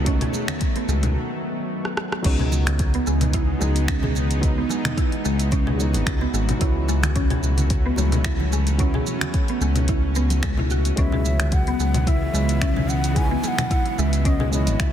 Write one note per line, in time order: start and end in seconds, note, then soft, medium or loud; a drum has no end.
0.00 0.27 C#2 loud
0.00 2.20 D#3 medium
0.00 0.04 F#3 medium
0.00 2.21 F#3 medium
0.00 0.06 A3 medium
0.00 2.21 A3 medium
0.00 2.21 B3 medium
0.00 0.07 C#4 medium
0.00 0.08 D#4 medium
0.00 2.21 F#4 medium
0.04 1.15 F#3 medium
0.04 1.15 A3 medium
0.04 0.21 C#4 medium
0.04 1.16 C#4 medium
0.04 1.17 D#4 medium
0.04 kick loud
0.04 closed hi-hat medium
0.04 shaker soft
0.21 0.33 G#4 medium
0.21 closed hi-hat soft
0.21 low conga medium
0.33 muted conga medium
0.33 high conga medium
0.33 shaker medium
0.48 finger snap medium
0.48 closed hi-hat soft
0.48 low conga medium
0.48 shaker soft
0.61 kick loud
0.61 closed hi-hat medium
0.61 shaker soft
0.76 0.87 B3 medium
0.76 closed hi-hat soft
0.76 muted conga medium
0.88 1.16 C#2 medium
0.88 1.15 G#3 medium
0.88 shaker medium
1.03 closed hi-hat soft
1.03 low conga medium
1.03 shaker soft
1.85 cross-stick medium
1.97 cross-stick medium
2.12 cross-stick medium
2.22 3.00 C#2 loud
2.22 10.94 E3 medium
2.22 3.57 F#3 medium
2.22 3.58 G#3 medium
2.22 6.57 G#3 medium
2.22 6.57 B3 medium
2.22 3.58 B3 medium
2.22 2.39 C#4 medium
2.22 6.57 D#4 medium
2.22 4.41 G#4 medium
2.22 kick loud
2.22 closed hi-hat medium
2.22 crash loud
2.22 shaker soft
2.26 3.59 D#4 medium
2.39 2.52 G#4 medium
2.39 low conga medium
2.52 muted conga medium
2.52 shaker medium
2.66 finger snap medium
2.66 closed hi-hat soft
2.66 low conga medium
2.66 shaker soft
2.79 kick loud
2.79 closed hi-hat medium
2.79 shaker soft
2.94 3.06 B3 medium
2.94 closed hi-hat soft
3.07 3.55 C#2 medium
3.07 3.33 G#3 medium
3.07 shaker medium
3.21 closed hi-hat soft
3.21 low conga medium
3.21 shaker soft
3.33 3.48 E4 medium
3.33 kick loud
3.33 closed hi-hat medium
3.33 shaker soft
3.59 4.64 C#2 medium
3.59 4.39 F#3 medium
3.59 4.40 G#3 medium
3.59 3.75 G#3 medium
3.59 4.40 B3 medium
3.59 high conga medium
3.59 shaker medium
3.63 4.41 D#4 medium
3.76 closed hi-hat soft
3.76 shaker soft
3.88 4.03 C#4 medium
3.88 finger snap medium
3.88 kick loud
3.88 closed hi-hat medium
3.88 shaker soft
4.03 4.15 G#4 medium
4.03 high conga medium
4.03 low conga medium
4.03 low conga loud
4.15 muted conga medium
4.15 shaker medium
4.30 closed hi-hat soft
4.30 high conga soft
4.30 shaker soft
4.41 5.76 F#3 medium
4.41 5.76 G#3 medium
4.41 5.77 B3 medium
4.41 10.94 F#4 medium
4.41 kick loud
4.41 closed hi-hat medium
4.41 shaker soft
4.45 5.78 D#4 medium
4.58 4.69 B3 medium
4.69 4.96 G#3 medium
4.69 muted conga medium
4.69 high conga medium
4.69 shaker medium
4.85 finger snap medium
4.85 closed hi-hat soft
4.85 low conga medium
4.85 shaker soft
4.97 5.12 E4 medium
4.97 kick loud
4.97 closed hi-hat medium
4.97 shaker soft
5.12 closed hi-hat soft
5.25 5.96 C#2 loud
5.25 5.39 G#3 medium
5.25 shaker medium
5.39 closed hi-hat soft
5.39 shaker soft
5.51 5.66 C#4 medium
5.51 kick loud
5.51 closed hi-hat medium
5.51 muted conga soft
5.51 shaker soft
5.67 5.79 G#4 medium
5.67 low conga medium
5.77 6.57 F#3 medium
5.77 6.58 G#3 medium
5.77 6.59 B3 medium
5.77 6.59 D#4 medium
5.77 muted conga soft
5.77 shaker medium
5.93 6.03 G#1 loud
5.93 closed hi-hat soft
5.93 muted conga medium
5.93 high conga medium
5.93 shaker soft
6.06 6.26 C#2 loud
6.06 finger snap medium
6.06 kick loud
6.06 closed hi-hat medium
6.06 shaker soft
6.21 6.33 B3 medium
6.21 muted conga soft
6.33 6.53 G#1 medium
6.33 6.60 G#3 medium
6.33 shaker medium
6.49 closed hi-hat soft
6.49 high conga soft
6.49 low conga medium
6.49 shaker soft
6.59 7.37 C#2 loud
6.59 7.94 F#3 medium
6.59 10.94 F#3 medium
6.59 10.94 A3 medium
6.59 7.94 B3 medium
6.59 10.94 C#4 medium
6.59 7.95 C#4 medium
6.59 6.75 E4 medium
6.59 kick loud
6.59 closed hi-hat medium
6.59 shaker soft
6.63 7.96 E4 medium
6.88 7.03 G#3 medium
6.88 muted conga medium
6.88 shaker medium
7.03 finger snap medium
7.03 closed hi-hat soft
7.03 low conga loud
7.03 shaker medium
7.16 7.30 C#4 medium
7.16 kick loud
7.16 closed hi-hat medium
7.16 shaker soft
7.30 7.43 G#4 medium
7.30 closed hi-hat soft
7.30 low conga medium
7.43 7.91 C#2 medium
7.43 shaker medium
7.57 closed hi-hat soft
7.57 low conga medium
7.57 shaker soft
7.70 kick loud
7.70 closed hi-hat medium
7.70 shaker soft
7.86 7.97 B3 medium
7.96 9.00 C#2 loud
7.96 8.76 F#3 medium
7.96 8.24 G#3 medium
7.96 8.76 B3 medium
7.96 8.77 C#4 medium
7.96 8.78 E4 medium
7.96 high conga medium
7.96 shaker medium
8.12 closed hi-hat soft
8.12 low conga medium
8.12 shaker soft
8.24 8.39 E4 medium
8.24 finger snap medium
8.24 kick loud
8.24 closed hi-hat medium
8.24 shaker soft
8.40 high conga medium
8.40 low conga loud
8.53 8.67 G#3 medium
8.53 muted conga medium
8.53 shaker medium
8.67 closed hi-hat soft
8.67 high conga soft
8.67 shaker soft
8.78 10.12 F#3 medium
8.78 10.13 B3 medium
8.78 8.94 C#4 medium
8.78 10.14 C#4 medium
8.78 10.14 E4 medium
8.78 kick loud
8.78 closed hi-hat medium
8.78 shaker soft
8.94 9.06 G#4 medium
8.94 low conga medium
9.07 muted conga medium
9.07 high conga medium
9.07 shaker medium
9.21 finger snap medium
9.21 closed hi-hat soft
9.21 low conga medium
9.21 shaker soft
9.34 kick loud
9.34 closed hi-hat medium
9.34 shaker soft
9.48 9.60 B3 medium
9.48 closed hi-hat soft
9.61 10.03 C#2 medium
9.61 9.88 G#3 medium
9.61 shaker medium
9.76 closed hi-hat soft
9.76 low conga medium
9.76 shaker soft
9.88 10.03 E4 medium
9.88 kick loud
9.88 closed hi-hat medium
9.88 muted conga soft
9.88 shaker soft
10.04 10.91 C#2 medium
10.15 10.30 B3 medium
10.15 muted conga soft
10.15 shaker medium
10.30 closed hi-hat soft
10.30 muted conga medium
10.30 high conga medium
10.30 shaker soft
10.43 10.57 G#3 medium
10.43 finger snap medium
10.43 kick loud
10.43 closed hi-hat medium
10.43 shaker soft
10.57 10.70 E4 medium
10.57 muted conga soft
10.57 low conga medium
10.70 10.84 F#4 medium
10.70 shaker medium
10.85 closed hi-hat soft
10.85 high conga soft
10.85 shaker soft
10.96 11.73 C#2 loud
10.96 14.93 C#3 medium
10.96 14.93 E3 medium
10.96 14.93 F#3 medium
10.96 12.30 G#3 medium
10.96 14.93 G#3 medium
10.96 12.31 B3 medium
10.96 14.93 B3 medium
10.96 11.12 C#4 medium
10.96 12.31 C#4 medium
10.96 12.32 E4 medium
10.96 14.93 F#4 medium
10.96 11.55 E5 medium
10.96 kick loud
10.96 closed hi-hat medium
10.96 shaker soft
11.12 11.25 G#4 medium
11.12 low conga medium
11.25 muted conga medium
11.25 shaker medium
11.40 finger snap medium
11.40 closed hi-hat soft
11.40 low conga medium
11.40 shaker soft
11.52 12.09 F#5 medium
11.52 kick loud
11.52 closed hi-hat medium
11.52 shaker soft
11.67 11.79 B3 medium
11.67 closed hi-hat soft
11.79 12.28 C#2 medium
11.79 12.06 G#3 medium
11.79 shaker medium
11.94 closed hi-hat soft
11.94 low conga medium
11.94 shaker soft
12.07 12.21 E4 medium
12.07 12.90 E5 loud
12.07 kick loud
12.07 closed hi-hat soft
12.07 shaker soft
12.32 13.37 C#2 loud
12.32 13.12 G#3 medium
12.32 12.48 G#3 medium
12.32 13.13 B3 medium
12.32 13.14 C#4 medium
12.32 high conga medium
12.32 shaker medium
12.36 13.14 E4 medium
12.49 closed hi-hat soft
12.49 shaker soft
12.62 12.76 C#4 medium
12.62 finger snap medium
12.62 kick loud
12.62 closed hi-hat medium
12.62 shaker soft
12.76 12.88 G#4 medium
12.76 high conga medium
12.76 low conga medium
12.89 13.18 F#5 loud
12.89 muted conga medium
12.89 shaker medium
13.04 closed hi-hat soft
13.04 high conga soft
13.04 shaker soft
13.14 14.49 G#3 medium
13.14 14.49 B3 medium
13.14 14.50 D#4 medium
13.14 14.51 E4 medium
13.14 14.93 F#4 loud
13.14 13.44 G#5 loud
13.14 kick loud
13.14 closed hi-hat medium
13.14 shaker soft
13.31 13.42 B3 medium
13.43 13.70 G#3 medium
13.43 13.49 G#5 loud
13.43 muted conga medium
13.43 high conga medium
13.43 shaker medium
13.48 14.00 F#5 loud
13.58 finger snap medium
13.58 closed hi-hat soft
13.58 low conga medium
13.58 shaker soft
13.71 13.85 E4 medium
13.71 kick loud
13.71 closed hi-hat medium
13.71 shaker soft
13.86 closed hi-hat soft
13.98 14.69 C#2 medium
13.98 14.12 G#3 medium
13.98 14.27 E5 loud
13.98 shaker medium
14.13 closed hi-hat soft
14.13 shaker soft
14.25 14.40 C#4 medium
14.25 14.52 D#5 loud
14.25 kick loud
14.25 closed hi-hat medium
14.25 muted conga soft
14.25 shaker soft
14.40 14.52 G#4 medium
14.40 low conga medium
14.51 14.93 G#3 medium
14.51 14.93 B3 medium
14.51 14.93 C#4 medium
14.51 14.82 D#5 medium
14.51 muted conga soft
14.51 shaker medium
14.55 14.93 E4 medium
14.67 14.76 G#1 loud
14.67 closed hi-hat soft
14.67 muted conga medium
14.67 high conga medium
14.67 shaker soft
14.80 14.93 C#2 medium
14.80 14.93 E5 medium
14.80 finger snap medium
14.80 kick loud
14.80 closed hi-hat medium
14.80 shaker soft